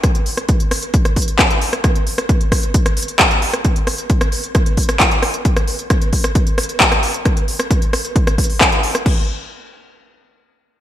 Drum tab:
CC |--------------------------------|--------------------------------|--------------------------------|--------------------------------|
HH |x-x-o-x-x-x-o-x-x-x-oxx-x-x-o-x-|x-x-o-x-x-x-o-x-x-x-oxx-x-x-o-x-|x-x-o-x-x-x-o-x-x-x-oxx-x-x-o-x-|x-x-o-x-x-x-o-x-x-x-oxx-x-x-o-x-|
CP |------------------------x-------|------------------------x-------|------------------------x-------|------------------------x-------|
SD |r-----r-----r-----r-----r-----r-|r-----r-----r-----r-----r-----r-|----r-----r-----r-----r-----r---|--r-----r-----r-----r-----r-----|
BD |o-------o-------o---o---o-------|o-------o---o---o-------o-------|o-------o-------o---o---o-------|o-------o---o---o-------o-------|

CC |--------------------------------|x-------------------------------|
HH |x-x-o-x-x-x-o-x-x-x-oxo-x-x-o-x-|--------------------------------|
CP |------------------------x-------|--------------------------------|
SD |r-----r-----r-----r-----r-----r-|--------------------------------|
BD |o-------o-------o---o---o-------|o-------------------------------|